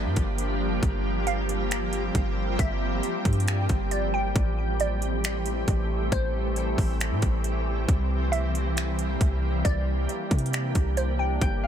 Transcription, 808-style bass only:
0, 0, Header, 1, 2, 480
1, 0, Start_track
1, 0, Tempo, 441176
1, 900, Time_signature, 4, 2, 24, 8
1, 12699, End_track
2, 0, Start_track
2, 0, Title_t, "808-style bass"
2, 0, Program_c, 0, 38
2, 59, Note_on_c, 0, 43, 98
2, 173, Note_off_c, 0, 43, 0
2, 181, Note_on_c, 0, 31, 105
2, 871, Note_off_c, 0, 31, 0
2, 899, Note_on_c, 0, 31, 114
2, 2296, Note_off_c, 0, 31, 0
2, 2338, Note_on_c, 0, 31, 106
2, 2800, Note_off_c, 0, 31, 0
2, 2819, Note_on_c, 0, 31, 111
2, 3280, Note_off_c, 0, 31, 0
2, 3538, Note_on_c, 0, 43, 101
2, 4000, Note_off_c, 0, 43, 0
2, 4021, Note_on_c, 0, 31, 101
2, 4711, Note_off_c, 0, 31, 0
2, 4739, Note_on_c, 0, 33, 117
2, 6136, Note_off_c, 0, 33, 0
2, 6178, Note_on_c, 0, 33, 104
2, 6639, Note_off_c, 0, 33, 0
2, 6659, Note_on_c, 0, 33, 111
2, 7351, Note_off_c, 0, 33, 0
2, 7378, Note_on_c, 0, 33, 105
2, 7738, Note_on_c, 0, 45, 98
2, 7755, Note_off_c, 0, 33, 0
2, 7853, Note_off_c, 0, 45, 0
2, 7861, Note_on_c, 0, 33, 111
2, 8551, Note_off_c, 0, 33, 0
2, 8579, Note_on_c, 0, 36, 114
2, 9976, Note_off_c, 0, 36, 0
2, 10018, Note_on_c, 0, 36, 106
2, 10480, Note_off_c, 0, 36, 0
2, 10499, Note_on_c, 0, 36, 110
2, 10960, Note_off_c, 0, 36, 0
2, 11218, Note_on_c, 0, 48, 100
2, 11679, Note_off_c, 0, 48, 0
2, 11700, Note_on_c, 0, 36, 107
2, 12391, Note_off_c, 0, 36, 0
2, 12419, Note_on_c, 0, 31, 112
2, 12699, Note_off_c, 0, 31, 0
2, 12699, End_track
0, 0, End_of_file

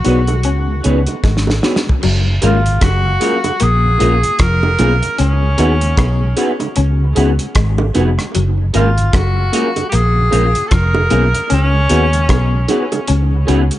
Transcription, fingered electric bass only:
0, 0, Header, 1, 2, 480
1, 0, Start_track
1, 0, Key_signature, 6, "major"
1, 0, Tempo, 789474
1, 1233, Time_signature, 4, 2, 24, 8
1, 8383, End_track
2, 0, Start_track
2, 0, Title_t, "Fingered electric bass"
2, 0, Program_c, 0, 33
2, 38, Note_on_c, 0, 35, 88
2, 276, Note_off_c, 0, 35, 0
2, 276, Note_on_c, 0, 37, 108
2, 489, Note_off_c, 0, 37, 0
2, 520, Note_on_c, 0, 37, 90
2, 642, Note_off_c, 0, 37, 0
2, 755, Note_on_c, 0, 32, 90
2, 968, Note_off_c, 0, 32, 0
2, 1240, Note_on_c, 0, 30, 102
2, 1451, Note_off_c, 0, 30, 0
2, 1480, Note_on_c, 0, 32, 97
2, 1691, Note_off_c, 0, 32, 0
2, 1716, Note_on_c, 0, 30, 96
2, 1929, Note_off_c, 0, 30, 0
2, 2201, Note_on_c, 0, 34, 98
2, 2412, Note_off_c, 0, 34, 0
2, 2440, Note_on_c, 0, 34, 92
2, 2562, Note_off_c, 0, 34, 0
2, 2677, Note_on_c, 0, 29, 85
2, 2889, Note_off_c, 0, 29, 0
2, 2917, Note_on_c, 0, 35, 81
2, 3041, Note_off_c, 0, 35, 0
2, 3160, Note_on_c, 0, 37, 97
2, 3371, Note_off_c, 0, 37, 0
2, 3399, Note_on_c, 0, 39, 92
2, 3610, Note_off_c, 0, 39, 0
2, 3635, Note_on_c, 0, 35, 98
2, 3848, Note_off_c, 0, 35, 0
2, 4120, Note_on_c, 0, 37, 103
2, 4331, Note_off_c, 0, 37, 0
2, 4360, Note_on_c, 0, 37, 93
2, 4483, Note_off_c, 0, 37, 0
2, 4597, Note_on_c, 0, 32, 101
2, 4810, Note_off_c, 0, 32, 0
2, 4842, Note_on_c, 0, 29, 95
2, 4963, Note_off_c, 0, 29, 0
2, 5083, Note_on_c, 0, 30, 97
2, 5293, Note_off_c, 0, 30, 0
2, 5322, Note_on_c, 0, 32, 93
2, 5532, Note_off_c, 0, 32, 0
2, 5556, Note_on_c, 0, 30, 90
2, 5769, Note_off_c, 0, 30, 0
2, 6040, Note_on_c, 0, 34, 103
2, 6251, Note_off_c, 0, 34, 0
2, 6281, Note_on_c, 0, 34, 94
2, 6403, Note_off_c, 0, 34, 0
2, 6520, Note_on_c, 0, 29, 94
2, 6731, Note_off_c, 0, 29, 0
2, 6762, Note_on_c, 0, 35, 90
2, 6884, Note_off_c, 0, 35, 0
2, 7002, Note_on_c, 0, 37, 103
2, 7212, Note_off_c, 0, 37, 0
2, 7240, Note_on_c, 0, 39, 87
2, 7451, Note_off_c, 0, 39, 0
2, 7477, Note_on_c, 0, 35, 93
2, 7689, Note_off_c, 0, 35, 0
2, 7962, Note_on_c, 0, 37, 106
2, 8172, Note_off_c, 0, 37, 0
2, 8201, Note_on_c, 0, 37, 92
2, 8323, Note_off_c, 0, 37, 0
2, 8383, End_track
0, 0, End_of_file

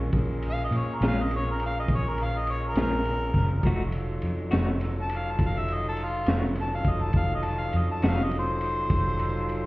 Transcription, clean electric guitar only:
0, 0, Header, 1, 2, 480
1, 0, Start_track
1, 0, Key_signature, -5, "minor"
1, 0, Tempo, 584795
1, 114, Time_signature, 12, 3, 24, 8
1, 7931, End_track
2, 0, Start_track
2, 0, Title_t, "Clean electric guitar"
2, 0, Program_c, 0, 27
2, 842, Note_on_c, 0, 61, 67
2, 843, Note_on_c, 0, 65, 67
2, 850, Note_on_c, 0, 46, 56
2, 850, Note_on_c, 0, 56, 62
2, 983, Note_off_c, 0, 61, 0
2, 983, Note_off_c, 0, 65, 0
2, 986, Note_off_c, 0, 46, 0
2, 987, Note_off_c, 0, 56, 0
2, 2281, Note_on_c, 0, 65, 53
2, 2283, Note_on_c, 0, 61, 49
2, 2284, Note_on_c, 0, 56, 48
2, 2290, Note_on_c, 0, 46, 44
2, 2423, Note_off_c, 0, 65, 0
2, 2424, Note_off_c, 0, 56, 0
2, 2424, Note_off_c, 0, 61, 0
2, 2427, Note_off_c, 0, 46, 0
2, 2999, Note_on_c, 0, 53, 74
2, 3004, Note_on_c, 0, 57, 75
2, 3008, Note_on_c, 0, 63, 79
2, 3008, Note_on_c, 0, 66, 79
2, 3142, Note_off_c, 0, 53, 0
2, 3144, Note_off_c, 0, 57, 0
2, 3146, Note_off_c, 0, 63, 0
2, 3146, Note_off_c, 0, 66, 0
2, 3701, Note_on_c, 0, 66, 76
2, 3705, Note_on_c, 0, 63, 70
2, 3713, Note_on_c, 0, 57, 65
2, 3714, Note_on_c, 0, 53, 59
2, 3853, Note_off_c, 0, 66, 0
2, 3855, Note_off_c, 0, 63, 0
2, 3859, Note_off_c, 0, 53, 0
2, 3859, Note_off_c, 0, 57, 0
2, 5159, Note_on_c, 0, 66, 53
2, 5162, Note_on_c, 0, 63, 55
2, 5163, Note_on_c, 0, 57, 43
2, 5167, Note_on_c, 0, 53, 46
2, 5302, Note_off_c, 0, 66, 0
2, 5303, Note_off_c, 0, 63, 0
2, 5304, Note_off_c, 0, 57, 0
2, 5306, Note_off_c, 0, 53, 0
2, 6591, Note_on_c, 0, 63, 69
2, 6593, Note_on_c, 0, 66, 71
2, 6596, Note_on_c, 0, 53, 55
2, 6599, Note_on_c, 0, 57, 68
2, 6738, Note_off_c, 0, 63, 0
2, 6739, Note_off_c, 0, 66, 0
2, 6740, Note_off_c, 0, 53, 0
2, 6742, Note_off_c, 0, 57, 0
2, 7931, End_track
0, 0, End_of_file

